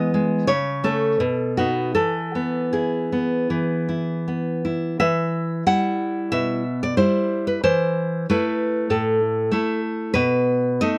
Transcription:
0, 0, Header, 1, 2, 480
1, 0, Start_track
1, 0, Key_signature, 4, "major"
1, 0, Tempo, 717703
1, 1306, Time_signature, 4, 2, 24, 8
1, 1306, Tempo, 774194
1, 2746, Tempo, 738007
1, 3226, Key_signature, 1, "minor"
1, 3226, Tempo, 654308
1, 5146, Tempo, 630915
1, 7066, Tempo, 658617
1, 7668, End_track
2, 0, Start_track
2, 0, Title_t, "Nylon-string guitar"
2, 0, Program_c, 0, 24
2, 0, Note_on_c, 0, 52, 61
2, 0, Note_on_c, 0, 56, 42
2, 0, Note_on_c, 0, 59, 40
2, 0, Note_on_c, 0, 75, 70
2, 86, Note_off_c, 0, 56, 0
2, 94, Note_on_c, 0, 56, 38
2, 301, Note_off_c, 0, 52, 0
2, 309, Note_off_c, 0, 75, 0
2, 317, Note_on_c, 0, 73, 69
2, 321, Note_on_c, 0, 49, 50
2, 327, Note_off_c, 0, 56, 0
2, 332, Note_off_c, 0, 59, 0
2, 552, Note_off_c, 0, 73, 0
2, 560, Note_on_c, 0, 57, 38
2, 561, Note_on_c, 0, 61, 40
2, 564, Note_on_c, 0, 69, 60
2, 783, Note_off_c, 0, 57, 0
2, 783, Note_off_c, 0, 61, 0
2, 792, Note_off_c, 0, 49, 0
2, 802, Note_on_c, 0, 47, 49
2, 1032, Note_off_c, 0, 69, 0
2, 1052, Note_on_c, 0, 66, 58
2, 1061, Note_on_c, 0, 59, 37
2, 1067, Note_on_c, 0, 63, 39
2, 1284, Note_off_c, 0, 59, 0
2, 1287, Note_off_c, 0, 47, 0
2, 1287, Note_off_c, 0, 63, 0
2, 1294, Note_off_c, 0, 66, 0
2, 1301, Note_on_c, 0, 69, 66
2, 1308, Note_on_c, 0, 52, 45
2, 1553, Note_on_c, 0, 59, 33
2, 1758, Note_off_c, 0, 69, 0
2, 1786, Note_on_c, 0, 68, 45
2, 1790, Note_on_c, 0, 64, 34
2, 2025, Note_off_c, 0, 59, 0
2, 2032, Note_on_c, 0, 59, 36
2, 2243, Note_off_c, 0, 52, 0
2, 2266, Note_on_c, 0, 52, 38
2, 2497, Note_off_c, 0, 64, 0
2, 2504, Note_on_c, 0, 64, 33
2, 2725, Note_off_c, 0, 68, 0
2, 2739, Note_off_c, 0, 59, 0
2, 2747, Note_on_c, 0, 59, 33
2, 2980, Note_off_c, 0, 64, 0
2, 2988, Note_on_c, 0, 64, 36
2, 3199, Note_off_c, 0, 52, 0
2, 3212, Note_off_c, 0, 64, 0
2, 3215, Note_on_c, 0, 76, 77
2, 3219, Note_on_c, 0, 52, 55
2, 3226, Note_off_c, 0, 59, 0
2, 3674, Note_off_c, 0, 76, 0
2, 3681, Note_off_c, 0, 52, 0
2, 3704, Note_on_c, 0, 55, 39
2, 3705, Note_on_c, 0, 78, 75
2, 3708, Note_on_c, 0, 64, 41
2, 4169, Note_off_c, 0, 78, 0
2, 4182, Note_on_c, 0, 76, 74
2, 4187, Note_on_c, 0, 47, 45
2, 4404, Note_off_c, 0, 55, 0
2, 4406, Note_off_c, 0, 64, 0
2, 4535, Note_off_c, 0, 76, 0
2, 4558, Note_on_c, 0, 74, 64
2, 4658, Note_off_c, 0, 47, 0
2, 4662, Note_on_c, 0, 72, 70
2, 4666, Note_off_c, 0, 74, 0
2, 4668, Note_on_c, 0, 55, 38
2, 4669, Note_on_c, 0, 64, 47
2, 5009, Note_off_c, 0, 72, 0
2, 5029, Note_on_c, 0, 71, 59
2, 5115, Note_off_c, 0, 55, 0
2, 5115, Note_off_c, 0, 64, 0
2, 5146, Note_off_c, 0, 71, 0
2, 5149, Note_on_c, 0, 72, 74
2, 5150, Note_on_c, 0, 52, 59
2, 5614, Note_off_c, 0, 72, 0
2, 5620, Note_off_c, 0, 52, 0
2, 5652, Note_on_c, 0, 57, 40
2, 5652, Note_on_c, 0, 71, 68
2, 5659, Note_on_c, 0, 64, 47
2, 6101, Note_off_c, 0, 71, 0
2, 6112, Note_on_c, 0, 45, 46
2, 6114, Note_on_c, 0, 69, 60
2, 6325, Note_off_c, 0, 57, 0
2, 6329, Note_off_c, 0, 64, 0
2, 6570, Note_off_c, 0, 45, 0
2, 6580, Note_on_c, 0, 57, 44
2, 6592, Note_on_c, 0, 64, 48
2, 6795, Note_off_c, 0, 69, 0
2, 7035, Note_off_c, 0, 57, 0
2, 7041, Note_off_c, 0, 64, 0
2, 7052, Note_on_c, 0, 71, 73
2, 7062, Note_on_c, 0, 47, 56
2, 7521, Note_off_c, 0, 71, 0
2, 7531, Note_off_c, 0, 47, 0
2, 7543, Note_on_c, 0, 75, 78
2, 7549, Note_on_c, 0, 57, 40
2, 7549, Note_on_c, 0, 63, 47
2, 7668, Note_off_c, 0, 57, 0
2, 7668, Note_off_c, 0, 63, 0
2, 7668, Note_off_c, 0, 75, 0
2, 7668, End_track
0, 0, End_of_file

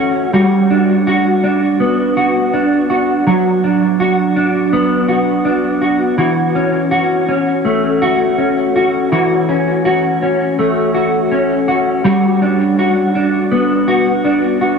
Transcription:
0, 0, Header, 1, 2, 480
1, 0, Start_track
1, 0, Tempo, 731707
1, 223, Time_signature, 4, 2, 24, 8
1, 9700, End_track
2, 0, Start_track
2, 0, Title_t, "Clean electric guitar"
2, 0, Program_c, 0, 27
2, 0, Note_on_c, 0, 52, 90
2, 0, Note_on_c, 0, 57, 71
2, 0, Note_on_c, 0, 61, 67
2, 0, Note_on_c, 0, 66, 64
2, 216, Note_off_c, 0, 52, 0
2, 219, Note_off_c, 0, 66, 0
2, 219, Note_on_c, 0, 55, 85
2, 222, Note_on_c, 0, 66, 74
2, 269, Note_off_c, 0, 57, 0
2, 269, Note_off_c, 0, 61, 0
2, 462, Note_on_c, 0, 62, 61
2, 700, Note_off_c, 0, 66, 0
2, 702, Note_on_c, 0, 66, 76
2, 940, Note_off_c, 0, 62, 0
2, 943, Note_on_c, 0, 62, 64
2, 1182, Note_on_c, 0, 59, 65
2, 1420, Note_off_c, 0, 66, 0
2, 1423, Note_on_c, 0, 66, 68
2, 1661, Note_off_c, 0, 62, 0
2, 1664, Note_on_c, 0, 62, 62
2, 1900, Note_off_c, 0, 66, 0
2, 1902, Note_on_c, 0, 66, 63
2, 2141, Note_off_c, 0, 55, 0
2, 2143, Note_on_c, 0, 54, 84
2, 2146, Note_off_c, 0, 66, 0
2, 2148, Note_on_c, 0, 66, 73
2, 2385, Note_off_c, 0, 62, 0
2, 2388, Note_on_c, 0, 62, 59
2, 2621, Note_off_c, 0, 66, 0
2, 2624, Note_on_c, 0, 66, 81
2, 2854, Note_off_c, 0, 62, 0
2, 2862, Note_on_c, 0, 62, 67
2, 3099, Note_off_c, 0, 59, 0
2, 3102, Note_on_c, 0, 59, 75
2, 3333, Note_off_c, 0, 66, 0
2, 3335, Note_on_c, 0, 66, 64
2, 3567, Note_off_c, 0, 62, 0
2, 3575, Note_on_c, 0, 62, 60
2, 3812, Note_off_c, 0, 66, 0
2, 3815, Note_on_c, 0, 66, 63
2, 4051, Note_off_c, 0, 54, 0
2, 4054, Note_off_c, 0, 66, 0
2, 4054, Note_on_c, 0, 52, 89
2, 4057, Note_on_c, 0, 66, 66
2, 4107, Note_off_c, 0, 62, 0
2, 4110, Note_off_c, 0, 59, 0
2, 4298, Note_on_c, 0, 61, 58
2, 4532, Note_off_c, 0, 66, 0
2, 4535, Note_on_c, 0, 66, 74
2, 4771, Note_off_c, 0, 61, 0
2, 4779, Note_on_c, 0, 61, 62
2, 5017, Note_on_c, 0, 57, 67
2, 5258, Note_off_c, 0, 66, 0
2, 5261, Note_on_c, 0, 66, 76
2, 5490, Note_off_c, 0, 61, 0
2, 5498, Note_on_c, 0, 61, 60
2, 5742, Note_off_c, 0, 66, 0
2, 5745, Note_on_c, 0, 66, 69
2, 5980, Note_off_c, 0, 52, 0
2, 5983, Note_off_c, 0, 66, 0
2, 5983, Note_on_c, 0, 52, 86
2, 5985, Note_on_c, 0, 66, 78
2, 6217, Note_off_c, 0, 61, 0
2, 6225, Note_on_c, 0, 61, 62
2, 6460, Note_off_c, 0, 66, 0
2, 6463, Note_on_c, 0, 66, 77
2, 6699, Note_off_c, 0, 61, 0
2, 6706, Note_on_c, 0, 61, 68
2, 6938, Note_off_c, 0, 57, 0
2, 6946, Note_on_c, 0, 57, 69
2, 7177, Note_off_c, 0, 66, 0
2, 7180, Note_on_c, 0, 66, 64
2, 7415, Note_off_c, 0, 61, 0
2, 7423, Note_on_c, 0, 61, 70
2, 7660, Note_off_c, 0, 66, 0
2, 7662, Note_on_c, 0, 66, 69
2, 7898, Note_off_c, 0, 52, 0
2, 7901, Note_on_c, 0, 55, 95
2, 7903, Note_off_c, 0, 66, 0
2, 7905, Note_on_c, 0, 66, 81
2, 7951, Note_off_c, 0, 61, 0
2, 7952, Note_off_c, 0, 57, 0
2, 8146, Note_on_c, 0, 62, 62
2, 8386, Note_off_c, 0, 66, 0
2, 8389, Note_on_c, 0, 66, 80
2, 8625, Note_off_c, 0, 62, 0
2, 8627, Note_on_c, 0, 62, 65
2, 8866, Note_on_c, 0, 59, 69
2, 9102, Note_off_c, 0, 66, 0
2, 9104, Note_on_c, 0, 66, 70
2, 9342, Note_off_c, 0, 62, 0
2, 9345, Note_on_c, 0, 62, 64
2, 9583, Note_off_c, 0, 66, 0
2, 9585, Note_on_c, 0, 66, 63
2, 9700, Note_off_c, 0, 55, 0
2, 9700, Note_off_c, 0, 59, 0
2, 9700, Note_off_c, 0, 62, 0
2, 9700, Note_off_c, 0, 66, 0
2, 9700, End_track
0, 0, End_of_file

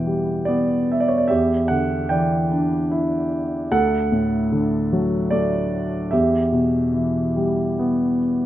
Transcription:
0, 0, Header, 1, 2, 480
1, 0, Start_track
1, 0, Key_signature, 1, "minor"
1, 0, Tempo, 818554
1, 761, Time_signature, 3, 2, 24, 8
1, 1239, Tempo, 800000
1, 3639, Tempo, 840336
1, 4979, End_track
2, 0, Start_track
2, 0, Title_t, "Grand piano"
2, 0, Program_c, 0, 0
2, 0, Control_c, 0, 64, 127
2, 0, Note_on_c, 0, 40, 47
2, 0, Note_on_c, 0, 47, 39
2, 0, Note_on_c, 0, 52, 38
2, 0, Note_on_c, 0, 71, 42
2, 0, Note_on_c, 0, 79, 64
2, 38, Note_on_c, 0, 55, 38
2, 257, Note_off_c, 0, 71, 0
2, 266, Note_on_c, 0, 74, 57
2, 283, Note_on_c, 0, 59, 44
2, 307, Note_off_c, 0, 79, 0
2, 499, Note_off_c, 0, 47, 0
2, 537, Note_on_c, 0, 76, 51
2, 552, Note_off_c, 0, 74, 0
2, 588, Note_on_c, 0, 74, 51
2, 597, Note_off_c, 0, 76, 0
2, 635, Note_on_c, 0, 73, 52
2, 648, Note_off_c, 0, 74, 0
2, 692, Note_on_c, 0, 74, 47
2, 698, Note_off_c, 0, 73, 0
2, 737, Note_off_c, 0, 40, 0
2, 738, Note_off_c, 0, 52, 0
2, 739, Note_off_c, 0, 55, 0
2, 748, Note_off_c, 0, 59, 0
2, 748, Note_on_c, 0, 76, 62
2, 753, Note_off_c, 0, 74, 0
2, 760, Note_on_c, 0, 67, 44
2, 764, Note_on_c, 0, 40, 50
2, 770, Control_c, 0, 64, 0
2, 882, Control_c, 0, 64, 127
2, 985, Note_on_c, 0, 78, 63
2, 1001, Note_on_c, 0, 50, 37
2, 1002, Note_off_c, 0, 76, 0
2, 1227, Note_on_c, 0, 79, 60
2, 1237, Note_on_c, 0, 52, 39
2, 1237, Note_on_c, 0, 74, 41
2, 1239, Note_off_c, 0, 78, 0
2, 1457, Note_off_c, 0, 67, 0
2, 1479, Note_on_c, 0, 62, 45
2, 1719, Note_on_c, 0, 64, 47
2, 1932, Note_off_c, 0, 79, 0
2, 1937, Note_off_c, 0, 74, 0
2, 1938, Note_off_c, 0, 50, 0
2, 2179, Note_off_c, 0, 52, 0
2, 2181, Note_off_c, 0, 62, 0
2, 2182, Note_off_c, 0, 40, 0
2, 2188, Note_off_c, 0, 64, 0
2, 2201, Note_on_c, 0, 78, 74
2, 2202, Note_on_c, 0, 69, 54
2, 2203, Note_on_c, 0, 38, 51
2, 2211, Control_c, 0, 64, 0
2, 2324, Control_c, 0, 64, 127
2, 2444, Note_on_c, 0, 45, 40
2, 2685, Note_on_c, 0, 50, 45
2, 2926, Note_on_c, 0, 54, 47
2, 3135, Note_off_c, 0, 69, 0
2, 3154, Note_on_c, 0, 74, 64
2, 3163, Note_on_c, 0, 57, 46
2, 3188, Note_off_c, 0, 78, 0
2, 3374, Note_off_c, 0, 45, 0
2, 3616, Note_off_c, 0, 38, 0
2, 3616, Note_off_c, 0, 50, 0
2, 3620, Note_off_c, 0, 54, 0
2, 3627, Note_off_c, 0, 57, 0
2, 3636, Note_on_c, 0, 76, 60
2, 3645, Note_on_c, 0, 40, 53
2, 3648, Control_c, 0, 64, 0
2, 3649, Note_on_c, 0, 67, 41
2, 3651, Note_off_c, 0, 74, 0
2, 3763, Control_c, 0, 64, 127
2, 3873, Note_on_c, 0, 47, 42
2, 4110, Note_on_c, 0, 52, 39
2, 4355, Note_on_c, 0, 55, 43
2, 4599, Note_on_c, 0, 59, 41
2, 4814, Note_off_c, 0, 76, 0
2, 4817, Note_off_c, 0, 47, 0
2, 4821, Note_off_c, 0, 67, 0
2, 4979, Note_off_c, 0, 40, 0
2, 4979, Note_off_c, 0, 52, 0
2, 4979, Note_off_c, 0, 55, 0
2, 4979, Note_off_c, 0, 59, 0
2, 4979, End_track
0, 0, End_of_file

